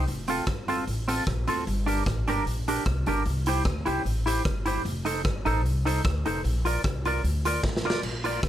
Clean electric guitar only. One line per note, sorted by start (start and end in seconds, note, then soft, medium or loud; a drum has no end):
0.28 0.43 C4 medium
0.28 0.44 F4 medium
0.28 0.44 A4 medium
0.49 muted clean electric guitar stroke medium
0.68 0.83 C4 medium
0.68 0.84 F4 medium
0.68 0.84 A4 medium
1.08 1.23 C4 medium
1.08 1.23 F4 medium
1.08 1.24 A4 medium
1.48 1.63 C4 medium
1.48 1.63 F4 medium
1.48 1.64 A4 medium
1.86 2.02 D4 medium
1.86 2.02 G4 medium
1.86 2.03 A#4 medium
2.07 muted clean electric guitar stroke soft
2.28 2.42 D4 medium
2.28 2.43 G4 loud
2.28 2.43 A#4 loud
2.68 2.83 D4 medium
2.68 2.83 G4 medium
2.68 2.83 A#4 medium
3.07 3.22 D4 medium
3.07 3.22 G4 medium
3.07 3.23 A#4 medium
3.47 3.62 E4 medium
3.47 3.62 G4 medium
3.47 3.63 C5 loud
3.86 4.01 E4 medium
3.86 4.02 G4 medium
3.86 4.02 C5 loud
4.26 4.41 E4 medium
4.26 4.42 G4 medium
4.26 4.42 C5 medium
4.66 4.81 E4 medium
4.66 4.82 G4 medium
4.66 4.82 C5 medium
5.05 5.20 D#4 medium
5.05 5.21 A4 medium
5.05 5.21 C5 medium
5.24 muted clean electric guitar stroke soft
5.45 5.61 D#4 medium
5.45 5.61 A4 loud
5.45 5.61 C5 medium
5.85 6.01 D#4 medium
5.85 6.01 A4 medium
5.85 6.01 C5 medium
6.26 6.40 D#4 medium
6.26 6.41 A4 medium
6.26 6.41 C5 medium
6.65 6.80 F4 medium
6.65 6.81 A#4 medium
6.65 6.81 D5 medium
6.84 muted clean electric guitar stroke soft
7.06 7.20 F4 medium
7.06 7.21 A#4 medium
7.06 7.21 D5 loud
7.45 7.60 F4 medium
7.45 7.61 A#4 medium
7.45 7.61 D5 loud
7.85 8.00 F4 medium
7.85 8.00 A#4 medium
7.85 8.01 D5 medium
8.24 8.39 F4 medium
8.24 8.40 A#4 medium
8.24 8.40 D5 loud